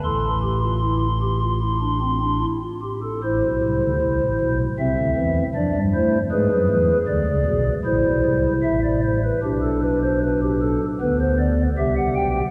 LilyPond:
<<
  \new Staff \with { instrumentName = "Pipe organ" } { \time 4/4 \key a \minor \tempo 4 = 77 << { c'''2.~ c'''8 r8 | c''2 e''4 d''8 c''8 | b'4 d''4 c''4 e''16 d''16 c''16 b'16 | \key g \major g'16 a'16 b'16 c''16 b'16 g'16 a'8 b'16 c''16 d''8 e''16 fis''16 g''8 | } \\ { a'8 g'16 f'16 e'8 g'16 f'16 e'16 d'16 c'16 d'16 e'16 f'16 g'16 a'16 | e'4 e'4 c'4 d'8 e'8 | gis'2 e'2 | d'2 b4 g'4 | } >> }
  \new Staff \with { instrumentName = "Pipe organ" } { \clef bass \time 4/4 \key a \minor <a,, a,>2.~ <a,, a,>8 r8 | <a,, a,>16 <b,, b,>16 <c, c>16 <d, d>16 <c, c>16 <a,, a,>16 <b,, b,>8 <c, c>16 <d, d>16 <e, e>8 <f, f>16 <g, g>16 a8 | <gis, gis>16 <fis, fis>16 <e, e>8 <d, d>16 <cis, cis>16 <b,, b,>8 <a,, a,>16 <b,, b,>16 <c, c>8 <a,, a,>4 | \key g \major <b,, b,>2 <d, d>4 <c, c>8 <b,, b,>8 | }
>>